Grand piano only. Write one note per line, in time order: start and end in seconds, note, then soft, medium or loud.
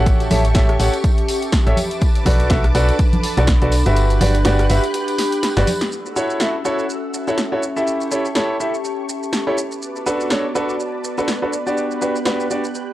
0.00 0.28 G4 medium
0.00 0.28 A4 medium
0.00 0.28 C#5 medium
0.00 0.28 F#5 medium
0.31 0.43 G4 medium
0.31 0.43 A4 medium
0.31 0.43 C#5 medium
0.31 0.43 E5 medium
0.55 0.74 G4 medium
0.55 0.74 A4 medium
0.55 0.74 C#5 medium
0.55 0.74 E5 loud
0.80 0.92 G4 medium
0.80 0.92 A4 medium
0.80 0.92 C#5 medium
0.80 0.92 F#5 medium
1.67 1.76 G4 medium
1.67 1.76 A4 medium
1.67 1.76 C#5 medium
1.67 1.76 E5 loud
2.26 2.48 F#4 loud
2.26 2.48 A4 medium
2.26 2.48 B4 medium
2.26 2.48 D5 loud
2.50 2.63 F#4 medium
2.50 2.63 A4 medium
2.50 2.63 B4 medium
2.50 2.63 E5 loud
2.75 2.93 F#4 loud
2.75 2.93 A4 medium
2.75 2.93 B4 medium
2.75 2.93 D5 loud
3.37 3.47 F#4 medium
3.37 3.47 A4 medium
3.37 3.47 B4 medium
3.37 3.47 D5 loud
3.62 3.71 F#4 medium
3.62 3.71 A4 medium
3.62 3.71 B4 medium
3.62 3.71 D5 medium
3.86 4.19 F#4 medium
3.86 4.19 G4 medium
3.86 4.19 B4 medium
3.86 4.19 E5 medium
4.21 4.33 F#4 medium
4.21 4.33 G4 medium
4.21 4.33 B4 medium
4.21 4.33 D5 medium
4.45 4.64 F#4 medium
4.45 4.64 G4 medium
4.45 4.64 B4 medium
4.45 4.64 D5 loud
4.70 4.82 F#4 medium
4.70 4.82 G4 medium
4.70 4.82 B4 medium
4.70 4.82 E5 medium
5.57 5.66 F#4 medium
5.57 5.66 G4 medium
5.57 5.66 B4 medium
5.57 5.66 D5 loud
6.16 6.38 E4 medium
6.16 6.38 F#4 medium
6.16 6.38 A4 medium
6.16 6.38 C#5 loud
6.41 6.53 E4 medium
6.41 6.53 F#4 medium
6.41 6.53 A4 medium
6.41 6.53 E5 loud
6.65 6.83 E4 medium
6.65 6.83 F#4 medium
6.65 6.83 A4 medium
6.65 6.83 C#5 loud
7.28 7.37 E4 medium
7.28 7.37 F#4 medium
7.28 7.37 A4 medium
7.28 7.37 C#5 medium
7.52 7.61 E4 medium
7.52 7.61 F#4 medium
7.52 7.61 A4 medium
7.52 7.61 C#5 medium
7.76 8.09 E4 medium
7.76 8.09 G4 medium
7.76 8.09 A4 medium
7.76 8.09 E5 medium
8.11 8.24 E4 medium
8.11 8.24 G4 medium
8.11 8.24 A4 medium
8.11 8.24 C#5 medium
8.36 8.54 E4 medium
8.36 8.54 G4 medium
8.36 8.54 A4 medium
8.36 8.54 C#5 loud
8.60 8.72 E4 medium
8.60 8.72 G4 medium
8.60 8.72 A4 medium
8.60 8.72 E5 medium
9.47 9.56 E4 medium
9.47 9.56 G4 medium
9.47 9.56 A4 medium
9.47 9.56 C#5 medium
10.06 10.28 D4 medium
10.06 10.28 F#4 medium
10.06 10.28 A4 medium
10.06 10.28 B4 loud
10.31 10.43 D4 medium
10.31 10.43 F#4 medium
10.31 10.43 A4 medium
10.31 10.43 C#5 medium
10.55 10.74 D4 medium
10.55 10.74 F#4 medium
10.55 10.74 A4 medium
10.55 10.74 B4 loud
11.18 11.27 D4 medium
11.18 11.27 F#4 medium
11.18 11.27 A4 medium
11.18 11.27 B4 medium
11.42 11.52 D4 medium
11.42 11.52 F#4 medium
11.42 11.52 A4 medium
11.42 11.52 B4 medium
11.67 11.99 D4 medium
11.67 11.99 F#4 medium
11.67 11.99 G4 medium
11.67 11.99 D5 medium
12.02 12.14 D4 medium
12.02 12.14 F#4 medium
12.02 12.14 G4 medium
12.02 12.14 B4 medium
12.26 12.44 D4 medium
12.26 12.44 F#4 medium
12.26 12.44 G4 medium
12.26 12.44 B4 loud
12.50 12.63 D4 medium
12.50 12.63 F#4 medium
12.50 12.63 G4 medium
12.50 12.63 D5 medium